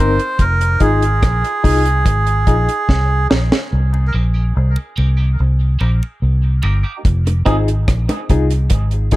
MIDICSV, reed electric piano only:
0, 0, Header, 1, 2, 480
1, 0, Start_track
1, 0, Tempo, 832178
1, 223, Time_signature, 4, 2, 24, 8
1, 5286, End_track
2, 0, Start_track
2, 0, Title_t, "Reed electric piano"
2, 0, Program_c, 0, 4
2, 0, Note_on_c, 0, 60, 85
2, 0, Note_on_c, 0, 63, 80
2, 0, Note_on_c, 0, 70, 98
2, 111, Note_off_c, 0, 60, 0
2, 113, Note_off_c, 0, 63, 0
2, 115, Note_off_c, 0, 70, 0
2, 463, Note_on_c, 0, 63, 92
2, 467, Note_on_c, 0, 65, 79
2, 471, Note_on_c, 0, 68, 98
2, 591, Note_off_c, 0, 63, 0
2, 593, Note_off_c, 0, 65, 0
2, 595, Note_off_c, 0, 68, 0
2, 944, Note_on_c, 0, 63, 83
2, 946, Note_on_c, 0, 65, 70
2, 951, Note_on_c, 0, 68, 92
2, 1072, Note_off_c, 0, 63, 0
2, 1072, Note_off_c, 0, 65, 0
2, 1075, Note_off_c, 0, 68, 0
2, 1423, Note_on_c, 0, 63, 81
2, 1428, Note_on_c, 0, 65, 75
2, 1431, Note_on_c, 0, 68, 93
2, 1551, Note_off_c, 0, 63, 0
2, 1553, Note_off_c, 0, 65, 0
2, 1555, Note_off_c, 0, 68, 0
2, 1904, Note_on_c, 0, 63, 92
2, 1906, Note_on_c, 0, 65, 80
2, 1910, Note_on_c, 0, 68, 94
2, 2032, Note_off_c, 0, 63, 0
2, 2033, Note_off_c, 0, 65, 0
2, 2034, Note_off_c, 0, 68, 0
2, 2385, Note_on_c, 0, 60, 91
2, 2388, Note_on_c, 0, 63, 78
2, 2393, Note_on_c, 0, 70, 93
2, 2512, Note_off_c, 0, 60, 0
2, 2514, Note_off_c, 0, 63, 0
2, 2516, Note_off_c, 0, 70, 0
2, 2863, Note_on_c, 0, 60, 86
2, 2867, Note_on_c, 0, 63, 81
2, 2870, Note_on_c, 0, 70, 92
2, 2991, Note_off_c, 0, 60, 0
2, 2993, Note_off_c, 0, 63, 0
2, 2994, Note_off_c, 0, 70, 0
2, 3346, Note_on_c, 0, 60, 90
2, 3351, Note_on_c, 0, 63, 82
2, 3352, Note_on_c, 0, 70, 94
2, 3472, Note_off_c, 0, 60, 0
2, 3475, Note_off_c, 0, 63, 0
2, 3476, Note_off_c, 0, 70, 0
2, 3827, Note_on_c, 0, 60, 89
2, 3830, Note_on_c, 0, 63, 78
2, 3834, Note_on_c, 0, 70, 97
2, 3953, Note_off_c, 0, 60, 0
2, 3954, Note_off_c, 0, 63, 0
2, 3956, Note_off_c, 0, 70, 0
2, 4303, Note_on_c, 0, 63, 94
2, 4308, Note_on_c, 0, 65, 78
2, 4310, Note_on_c, 0, 68, 93
2, 4431, Note_off_c, 0, 63, 0
2, 4433, Note_off_c, 0, 65, 0
2, 4435, Note_off_c, 0, 68, 0
2, 4787, Note_on_c, 0, 63, 79
2, 4790, Note_on_c, 0, 65, 80
2, 4792, Note_on_c, 0, 68, 86
2, 4912, Note_off_c, 0, 63, 0
2, 4914, Note_off_c, 0, 65, 0
2, 4915, Note_off_c, 0, 68, 0
2, 5261, Note_on_c, 0, 63, 89
2, 5264, Note_on_c, 0, 65, 88
2, 5268, Note_on_c, 0, 68, 98
2, 5286, Note_off_c, 0, 63, 0
2, 5286, Note_off_c, 0, 65, 0
2, 5286, Note_off_c, 0, 68, 0
2, 5286, End_track
0, 0, End_of_file